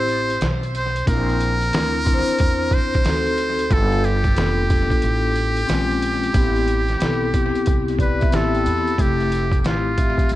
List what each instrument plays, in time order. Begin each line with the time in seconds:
Already playing: upright bass A1, vibraphone C4 E4 G4 C5, muted trumpet C5
0.09 closed hi-hat
0.30 closed hi-hat
0.41 upright bass B1, snare, closed hi-hat
0.63 closed hi-hat
0.75 muted trumpet C5, closed hi-hat
0.96 closed hi-hat
1.05 upright bass A#1, vibraphone C4 D4 E4 A#4, muted trumpet A#4, kick, closed hi-hat
1.29 closed hi-hat
1.41 closed hi-hat
1.62 closed hi-hat
1.71 upright bass D2, vibraphone C4 D4 E4 A#4, snare, closed hi-hat
2.04 vibraphone C4 D4 E4 A#4, kick, closed hi-hat
2.14 vibraphone C5
2.28 muted upright bass stroke, closed hi-hat
2.39 upright bass E2, kick, closed hi-hat
2.71 muted trumpet C5, kick, closed hi-hat
2.93 kick, closed hi-hat
3.03 upright bass D2, vibraphone C4 D#4 F#4 A4, snare, closed hi-hat
3.27 closed hi-hat
3.38 closed hi-hat
3.59 closed hi-hat
3.69 upright bass G1, vibraphone B3 D4 F4 A4, muted trumpet A4, kick, closed hi-hat
3.92 closed hi-hat
4.04 muted trumpet G4, closed hi-hat
4.24 kick, closed hi-hat
4.35 upright bass F1, vibraphone B3 D4 F4 A4, snare, closed hi-hat
4.67 vibraphone B3 D4 F4 A4, kick, closed hi-hat
4.90 muted upright bass stroke, kick, closed hi-hat
5.02 upright bass A1, closed hi-hat
5.36 closed hi-hat
5.57 closed hi-hat
5.67 upright bass A#1, vibraphone G#3 C4 C#4 F4, snare, closed hi-hat
5.91 closed hi-hat
6.02 closed hi-hat
6.23 closed hi-hat
6.33 upright bass A1, vibraphone B3 C4 E4 G4, kick, closed hi-hat
6.56 closed hi-hat
6.68 closed hi-hat
6.88 snare, closed hi-hat
6.99 upright bass B1, vibraphone B3 C4 E4 A4, snare, closed hi-hat
7.32 vibraphone B3 C4 E4 G4, kick, closed hi-hat
7.55 muted upright bass stroke, closed hi-hat
7.66 upright bass C2, kick, closed hi-hat
7.88 closed hi-hat
7.99 muted trumpet B4, vibraphone D5, kick, closed hi-hat
8.20 vibraphone E5, kick, closed hi-hat
8.30 upright bass A1, vibraphone B3 C4 E4 G4 E5, snare, closed hi-hat
8.35 muted trumpet A4
8.54 vibraphone G5, closed hi-hat
8.66 upright bass E2, vibraphone B5, closed hi-hat
8.88 closed hi-hat
8.97 upright bass F1, vibraphone A3 C4 E4 G4, kick, closed hi-hat
9.01 muted trumpet G4
9.20 closed hi-hat
9.32 closed hi-hat
9.52 kick, closed hi-hat
9.61 vibraphone A3 C4, muted trumpet G4, closed hi-hat
9.65 upright bass A1, vibraphone E4 G4, muted trumpet F4, snare
9.96 vibraphone A3 C4 G4 E5, kick, closed hi-hat
10.18 muted upright bass stroke, kick, closed hi-hat
10.29 upright bass G1, closed hi-hat